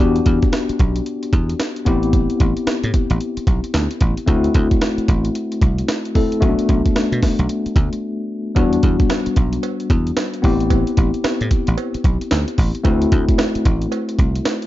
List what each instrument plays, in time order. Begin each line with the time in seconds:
Already playing: tine electric piano B3
0.00 slap bass E2, tine electric piano D4 F#4 G4
0.16 closed hi-hat
0.26 slap bass E2, kick, closed hi-hat
0.42 kick, closed hi-hat
0.53 snare, closed hi-hat
0.69 muted slap bass stroke, closed hi-hat
0.79 slap bass B1, kick, closed hi-hat
0.96 closed hi-hat
1.06 closed hi-hat
1.23 closed hi-hat
1.33 slap bass E2, kick, closed hi-hat
1.49 closed hi-hat
1.60 snare, closed hi-hat
1.76 closed hi-hat
1.85 slap bass A1, tine electric piano B3 C4 E4 G4, kick, closed hi-hat
2.03 closed hi-hat
2.13 kick, closed hi-hat
2.30 closed hi-hat
2.40 slap bass A1, kick, closed hi-hat
2.57 closed hi-hat
2.67 muted slap bass stroke, snare, closed hi-hat
2.83 slap bass A2, closed hi-hat
2.94 kick, closed hi-hat
3.10 slap bass A1, closed hi-hat
3.21 closed hi-hat
3.37 muted slap bass stroke, closed hi-hat
3.47 slap bass B1, kick, closed hi-hat
3.64 closed hi-hat
3.74 slap bass D2, snare, closed hi-hat
3.91 closed hi-hat
4.01 slap bass A1, kick, closed hi-hat
4.17 closed hi-hat
4.26 slap bass D2, tine electric piano A3 C4 E4 F#4, kick, closed hi-hat
4.44 closed hi-hat
4.54 slap bass D2, kick, closed hi-hat
4.71 kick, closed hi-hat
4.81 snare, closed hi-hat
4.98 muted slap bass stroke, closed hi-hat
5.08 slap bass A1, kick, closed hi-hat
5.25 closed hi-hat
5.35 closed hi-hat
5.52 closed hi-hat
5.62 slap bass C2, kick, closed hi-hat
5.78 closed hi-hat
5.88 snare, closed hi-hat
6.05 closed hi-hat
6.15 tine electric piano A3 C4 E4 A4, kick, open hi-hat
6.32 closed hi-hat
6.41 slap bass B1, tine electric piano A3 B3 C#4 F#4, kick, closed hi-hat
6.49 tine electric piano D4
6.59 closed hi-hat
6.69 slap bass B1, kick, closed hi-hat
6.86 kick, closed hi-hat
6.96 muted slap bass stroke, snare, closed hi-hat
7.12 slap bass B2, closed hi-hat
7.22 kick, snare, open hi-hat
7.39 slap bass B1, closed hi-hat
7.49 closed hi-hat
7.66 muted slap bass stroke, closed hi-hat
7.76 slap bass D2, kick, closed hi-hat
7.93 closed hi-hat
8.55 slap bass E2, tine electric piano G3 B3 D4 F#4, kick, closed hi-hat, cowbell
8.73 closed hi-hat
8.83 slap bass E2, kick, closed hi-hat
9.00 kick, closed hi-hat
9.10 snare, closed hi-hat, cowbell
9.26 muted slap bass stroke, closed hi-hat
9.36 slap bass B1, kick, closed hi-hat
9.53 closed hi-hat
9.63 closed hi-hat, cowbell
9.80 closed hi-hat
9.90 slap bass E2, kick, closed hi-hat
10.07 closed hi-hat
10.17 snare, closed hi-hat, cowbell
10.34 closed hi-hat
10.42 slap bass A1, tine electric piano B3 C4 E4 G4, kick, open hi-hat
10.60 closed hi-hat
10.70 kick, closed hi-hat, cowbell
10.87 closed hi-hat
10.97 slap bass A1, kick, closed hi-hat
11.14 closed hi-hat
11.24 muted slap bass stroke, snare, closed hi-hat, cowbell
11.41 slap bass A2, closed hi-hat
11.51 kick, closed hi-hat
11.67 slap bass A1, closed hi-hat
11.78 closed hi-hat, cowbell
11.94 muted slap bass stroke, closed hi-hat
12.04 slap bass B1, kick, closed hi-hat
12.21 closed hi-hat
12.31 slap bass D2, snare, closed hi-hat, cowbell
12.48 closed hi-hat
12.58 slap bass A1, kick, open hi-hat
12.75 closed hi-hat
12.84 slap bass D2, tine electric piano A3 C4 E4 F#4, kick, closed hi-hat, cowbell
13.02 closed hi-hat
13.12 slap bass D2, kick, closed hi-hat
13.29 kick, closed hi-hat
13.38 snare, closed hi-hat, cowbell
13.55 muted slap bass stroke, closed hi-hat
13.65 slap bass A1, kick, closed hi-hat
13.82 closed hi-hat
13.92 closed hi-hat, cowbell
14.09 closed hi-hat
14.19 slap bass C2, kick, closed hi-hat
14.35 closed hi-hat
14.45 snare, closed hi-hat, cowbell
14.62 closed hi-hat